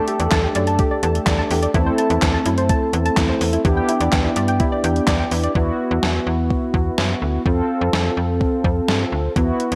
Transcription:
Already playing: analog polysynth A3 D4 G4 A4
0.08 synth arpeggio sound G4, closed hi-hat
0.20 fm bass E2, synth arpeggio sound D5, closed hi-hat
0.31 fm bass E2, synth arpeggio sound A5, kick, snare, clap, closed hi-hat
0.43 synth arpeggio sound G4
0.55 fm bass F#2, synth arpeggio sound D5, closed hi-hat
0.67 synth arpeggio sound A5, closed hi-hat
0.79 synth arpeggio sound G4, kick, closed hi-hat
0.91 synth arpeggio sound D5
1.03 fm bass E2, synth arpeggio sound A5, closed hi-hat
1.15 closed hi-hat
1.27 fm bass E2, synth arpeggio sound D5, kick, snare, clap, closed hi-hat
1.39 synth arpeggio sound A5
1.51 fm bass E2, synth arpeggio sound G4, open hi-hat
1.62 synth arpeggio sound D5, closed hi-hat
1.74 fm bass E2, analog polysynth A3 C4 E4 A4, synth arpeggio sound E4, kick, closed hi-hat
1.86 synth arpeggio sound C5
1.98 synth arpeggio sound A5, closed hi-hat
2.10 fm bass E2, synth arpeggio sound E4, closed hi-hat
2.22 fm bass E2, kick, snare, clap, closed hi-hat
2.34 synth arpeggio sound A5
2.46 fm bass F#2, synth arpeggio sound E4, closed hi-hat
2.58 synth arpeggio sound C5, closed hi-hat
2.69 synth arpeggio sound A5, kick, closed hi-hat
2.93 fm bass E2, closed hi-hat
3.05 synth arpeggio sound A5, closed hi-hat
3.17 fm bass E2, synth arpeggio sound E4, kick, snare, clap, closed hi-hat
3.29 synth arpeggio sound C5
3.41 fm bass E2, open hi-hat
3.53 synth arpeggio sound E4, closed hi-hat
3.65 fm bass E2, analog polysynth B3 D4 E4 G4, kick, closed hi-hat
3.77 synth arpeggio sound G5
3.89 synth arpeggio sound E4, closed hi-hat
4.00 fm bass E2, synth arpeggio sound D5, closed hi-hat
4.12 fm bass E2, synth arpeggio sound G5, kick, snare, clap, closed hi-hat
4.24 synth arpeggio sound E4
4.36 fm bass G2, synth arpeggio sound D5, closed hi-hat
4.48 synth arpeggio sound G5, closed hi-hat
4.60 synth arpeggio sound E4, kick, closed hi-hat
4.72 synth arpeggio sound D5
4.84 fm bass E2, synth arpeggio sound G5, closed hi-hat
4.96 closed hi-hat
5.07 fm bass E2, synth arpeggio sound D5, kick, snare, clap, closed hi-hat
5.20 synth arpeggio sound G5
5.31 fm bass E2, synth arpeggio sound E4, open hi-hat
5.43 synth arpeggio sound D5, closed hi-hat
5.55 fm bass E2, analog polysynth B3 E4 F#4, kick
5.91 fm bass E2
6.03 fm bass E2, snare
6.27 fm bass E2
6.50 kick
6.74 fm bass E2, kick
6.98 fm bass F#2, snare
7.22 fm bass D2
7.46 fm bass F2, analog polysynth C4 F4 A4, kick
7.81 fm bass F2
7.93 fm bass F2, snare
8.17 fm bass F2
8.41 kick
8.64 fm bass F2, kick
8.88 fm bass G2, snare
9.12 fm bass D2
9.36 fm bass E2, analog polysynth B3 E4 F#4, kick, closed hi-hat
9.60 closed hi-hat
9.72 fm bass E2, closed hi-hat

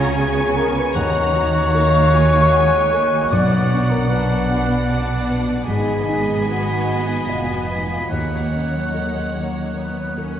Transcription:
Already playing: felt piano C#2 C#4 C#5 G#5, double bass section C#2, cello section C#3, harp C#3 G#3 C#4 G#4 C#5 G#5, viola section C#4, french horn section F4, clarinet C#5, flute F5, oboe G#5, violin section A#5 C#6
0.00 harp C#6
0.17 viola section B3, french horn section G#4, felt piano C#5, violin section G#5 C#6, flute G#5, harp G#5
0.38 harp C#5
0.57 felt piano G#4, harp G#4, french horn section A#4, flute A#5
0.76 harp C#4, french horn section B4, flute B5
0.95 felt piano D#2, double bass section D#2, harp D#3, cello section D#3, viola section A#3, french horn section C#5, clarinet D#5, oboe F#5, violin section F#5 A#5, flute C#6
1.16 harp A#3
1.35 harp D#4, felt piano F#4
1.55 harp F#4
1.75 felt piano A#4, harp A#4, violin section F5 A#5
1.95 harp D#5
2.14 felt piano F#4, violin section G#5
2.34 harp A#5
2.53 viola section G#3, felt piano F#5, harp F#5, violin section G#5
2.93 viola section A#3, felt piano A#4, harp A#4
3.13 harp F#4
3.32 double bass section B1, felt piano B1, harp B2, cello section B2, viola section B3, clarinet D5, french horn section D5, violin section F#5, flute D6
3.52 harp F#3
3.70 harp D4, felt piano D4, french horn section C#5, flute C#6
3.90 harp F#4, french horn section A#4, flute A#5
4.10 viola section D4, harp B4, french horn section B4, felt piano B4, violin section F#5, flute B5
4.30 harp D5
4.50 viola section D4, harp F#5, felt piano F#5
4.69 harp B5
4.89 viola section D4, felt piano D5, violin section D5 F#5, harp F#5
5.08 harp D5
5.29 harp B4, felt piano B4
5.48 harp F#4
5.67 double bass section G#1, felt piano G#2, cello section G#2, harp G#2, viola section B3, french horn section G#4, clarinet D#5, violin section D#5 G#5, flute G#5, oboe B5
5.88 harp D#3
6.08 harp D#4, felt piano D#4
6.27 harp G#4
6.46 french horn section F#4, harp B4, felt piano B4, flute F#5
6.68 harp D#5
6.88 harp G#5, felt piano G#5
7.08 french horn section D#4, flute D#5, harp B5
7.27 double bass section F1, cello section F2, french horn section F4, felt piano D#5, flute F5, harp G#5
7.50 french horn section F#4, harp D#5, flute F#5
7.68 french horn section D#4, felt piano B4, harp B4, flute D#5
7.90 french horn section F4, harp G#4, flute F5
8.10 felt piano D#2, double bass section D#2, cello section D#2, harp D#3, viola section A#3, french horn section D#4, clarinet C#5, violin section C#5 F#5, flute D#5, oboe F#5
8.32 harp A#3
8.53 felt piano C#4, harp C#4
8.74 harp F#3
8.94 viola section G#3, felt piano A#4, harp A#4
9.16 harp C#5
9.36 viola section A#3, felt piano F#5
9.57 harp A#5
9.77 viola section B3, felt piano C#5
9.97 harp C#5
10.18 viola section C#4, harp A#4, felt piano A#4

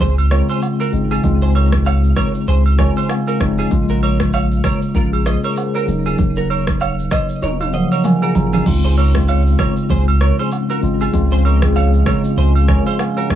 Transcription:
Already playing: tine electric piano C#3 G#3 C4 F4
0.00 sub bass C#2, clean electric guitar G#4 C5, kick, shaker
0.18 high agogo, shaker
0.30 tine electric piano C#3 G#3 C4 F4, clean electric guitar A#4 C#5, cross-stick
0.49 clean electric guitar G#4 C5, high agogo, shaker
0.62 low woodblock, shaker
0.80 clean electric guitar F#4 A#4, high agogo, shaker
0.92 sub bass G#1, tine electric piano C#3 G#3 C4 D#4, shaker
1.11 clean electric guitar F4 G#4, high agogo, shaker
1.23 sub bass C#2, tine electric piano C#3 G#3 C4 F4, kick, shaker
1.42 clean electric guitar G#4 C5, shaker
1.55 clean electric guitar A#4 C#5, high agogo
1.72 kick, cross-stick, shaker
1.86 clean electric guitar C#5 F5, high agogo, low woodblock, shaker
2.04 shaker
2.16 clean electric guitar A#4 C#5, kick, cross-stick, high agogo
2.34 shaker
2.47 sub bass C#2, clean electric guitar G#4 C5, shaker
2.66 high agogo, shaker
2.77 tine electric piano C#3 G#3 C4 F4 G#5, clean electric guitar A#4 C#5, kick, cross-stick
2.96 clean electric guitar G#4 C5, high agogo, shaker
3.09 tine electric piano F5, cross-stick, low woodblock, shaker
3.27 clean electric guitar F#4 A#4, high agogo, shaker
3.39 sub bass F1, tine electric piano C#3 G#3 C4 D#4 C#5, kick, cross-stick, shaker
3.58 clean electric guitar F4 G#4, high agogo, shaker
3.70 sub bass A#1, tine electric piano C#3 G#3 A#3 F4, kick, shaker
3.89 clean electric guitar F#4 A#4, shaker
4.03 clean electric guitar A#4 C#5, high agogo
4.20 kick, cross-stick, shaker
4.33 clean electric guitar C#5 F5, high agogo, low woodblock, shaker
4.52 shaker
4.64 clean electric guitar A#4 C#5, kick, cross-stick, high agogo
4.82 shaker
4.95 sub bass A#1, tine electric piano C#4 F4, clean electric guitar F4 A#4, kick, shaker
5.13 tine electric piano F4 G#4, high agogo, shaker
5.26 clean electric guitar C5 D#5, cross-stick
5.44 tine electric piano A#4, clean electric guitar A#4 C#5, high agogo, shaker
5.56 tine electric piano G#4 C5, low woodblock, shaker
5.74 clean electric guitar F#4 A#4, tine electric piano A#4 C#5, high agogo, shaker
5.86 sub bass D#1, tine electric piano C#3 F#3 A#3 D#4, shaker
6.06 clean electric guitar F4 G#4, high agogo, shaker
6.18 sub bass D#1, kick, shaker
6.36 clean electric guitar F#4 A#4, shaker
6.50 clean electric guitar A#4 C#5, high agogo
6.67 kick, cross-stick, shaker
6.81 clean electric guitar C#5 F5, high agogo, low woodblock, shaker
6.99 shaker
7.11 clean electric guitar C5 D#5, tine electric piano C#5, kick, cross-stick, high agogo, shaker
7.29 shaker
7.42 sub bass D#1, clean electric guitar A#4 C#5, tine electric piano D#5, high tom, shaker
7.60 tine electric piano F5, high tom, high agogo, shaker
7.72 tine electric piano C#3 F3 F#3 A#3 F#5, clean electric guitar C5 D#5, shaker
7.91 clean electric guitar A#4 C#5, high agogo, shaker
8.04 tine electric piano F#4 A#4 G#5, mid tom, low woodblock, shaker
8.22 tine electric piano F4 G#4, clean electric guitar F#4 A#4, high agogo, shaker
8.35 sub bass G#1, tine electric piano C#4 F4 A#5, floor tom, shaker
8.53 tine electric piano C4 D#4, clean electric guitar F4 G#4, floor tom, high agogo, shaker
8.65 sub bass C#2, tine electric piano C#3 G#3 C4 F4, ambient pad C#3 G#3 F4, kick, crash, shaker
8.84 clean electric guitar G#4 C5, shaker
8.97 clean electric guitar A#4 C#5, high agogo
9.14 tine electric piano C#3 G#3 C4 F4, kick, cross-stick, shaker
9.28 clean electric guitar C#5 F5, high agogo, shaker
9.47 shaker
9.59 clean electric guitar A#4 C#5, kick, cross-stick, high agogo
9.77 shaker
9.90 sub bass C#2, clean electric guitar G#4 C5, kick, shaker
10.08 high agogo, shaker
10.21 clean electric guitar A#4 C#5, cross-stick
10.39 clean electric guitar G#4 C5, high agogo, shaker
10.51 low woodblock, shaker
10.70 clean electric guitar F#4 A#4, high agogo, shaker
10.81 sub bass G#1, tine electric piano C#3 G#3 C4 F4, shaker
11.01 clean electric guitar F4 G#4, high agogo, shaker
11.12 sub bass C#2, tine electric piano C#3 G#3 C4 F4, kick, shaker
11.31 clean electric guitar G#4 C5, shaker
11.45 clean electric guitar A#4 C#5, high agogo
11.61 tine electric piano C#3 G#3 C4 G#4, kick, cross-stick, shaker
11.76 clean electric guitar C#5 F5, high agogo, shaker
11.94 shaker
12.06 clean electric guitar A#4 C#5, kick, cross-stick, high agogo
12.24 shaker
12.37 sub bass C#2, clean electric guitar G#4 C5, shaker
12.55 high agogo, shaker
12.68 clean electric guitar A#4 C#5, tine electric piano G#5, kick, cross-stick
12.86 clean electric guitar G#4 C5, tine electric piano F5, high agogo, shaker
12.99 tine electric piano F5, cross-stick, low woodblock, shaker
13.17 clean electric guitar F#4 A#4, tine electric piano C#5, high agogo, shaker
13.29 sub bass F1, tine electric piano C#3 G#3 C4 D#4, kick, cross-stick, shaker

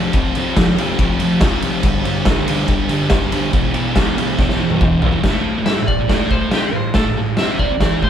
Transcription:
Already playing: distorted electric guitar F2 C3 F3
0.13 distorted electric guitar F2 C3 F3, kick, ride
0.35 distorted electric guitar F2 C3 F3, ride
0.57 distorted electric guitar F2 C3 F3, kick, snare, ride
0.78 distorted electric guitar F2 C3 F3, ride
0.99 distorted electric guitar F2 C3 F3, kick, ride
1.20 distorted electric guitar F2 C3 F3, ride
1.41 distorted electric guitar F2 C3 F3, kick, snare, ride
1.62 distorted electric guitar F2 C3 F3, ride
1.83 distorted electric guitar G2 D3 G3, kick, ride
2.05 distorted electric guitar G2 D3 G3, ride
2.25 distorted electric guitar G2 D3 G3, kick, snare, ride
2.47 distorted electric guitar G2 D3 G3, ride
2.66 distorted electric guitar G2 D3 G3, kick, ride
2.89 distorted electric guitar G2 D3 G3, ride
3.09 distorted electric guitar G2 D3 G3, kick, snare, ride
3.32 distorted electric guitar G2 D3 G3, ride
3.52 distorted electric guitar E2 B2 E3, kick, ride
3.73 distorted electric guitar E2 B2 E3, ride
3.96 distorted electric guitar E2 B2 E3, kick, snare, ride
4.17 distorted electric guitar E2 B2 E3, ride
4.39 distorted electric guitar E2 B2 E3, kick, snare
4.49 snare
4.62 distorted electric guitar E2 B2 E3
4.70 high tom
4.81 distorted electric guitar E2 B2 E3, kick, mid tom
5.02 distorted electric guitar E2 B2 E3, floor tom
5.13 floor tom
5.24 distorted electric guitar A2 A3, kick, snare, crash
5.59 distorted electric guitar A2
5.65 distorted electric guitar G2 G3, electric slide guitar E5, snare, crash
5.79 distorted electric guitar A2
5.87 electric slide guitar D5, kick
5.99 distorted electric guitar A2
6.08 distorted electric guitar A2 A3, kick, snare, crash
6.31 electric slide guitar C5, kick
6.51 distorted electric guitar C3 C4, electric slide guitar G4, snare, crash
6.62 muted distorted electric guitar stroke
6.73 distorted electric guitar A2, electric slide guitar C5
6.94 distorted electric guitar A2 A3, electric slide guitar A4, kick, snare, crash
7.07 distorted electric guitar A2
7.17 distorted electric guitar A2
7.37 distorted electric guitar C3 C4, electric slide guitar E5, snare, crash
7.59 electric slide guitar D5, kick
7.71 muted distorted electric guitar stroke
7.80 distorted electric guitar E3 E4, kick, snare, crash
8.02 distorted electric guitar A2, electric slide guitar C5, kick

